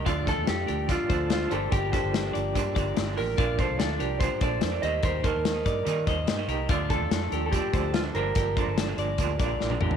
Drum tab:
HH |x-x-x-x-x-x-x-x-|x-x-x-x-x-x-x-o-|x-x-x-x-x-x-x-x-|x-x-x-x-x-x-x-x-|
SD |----o-------o---|----o-------o---|----o-------o---|----o-------o---|
T1 |----------------|----------------|----------------|----------------|
T2 |----------------|----------------|----------------|----------------|
FT |----------------|----------------|----------------|----------------|
BD |o-o-----o-o-----|o-o-----o-o-----|o-o-----o-o-----|o-o---o---o-----|

HH |x-x-x-x-x-x-x-x-|x-x-x-x-x-x-----|
SD |----o-------o---|----o-------o---|
T1 |----------------|-------------o--|
T2 |----------------|--------------o-|
FT |----------------|---------------o|
BD |o-o-----o-o-----|o-o-----o-o-----|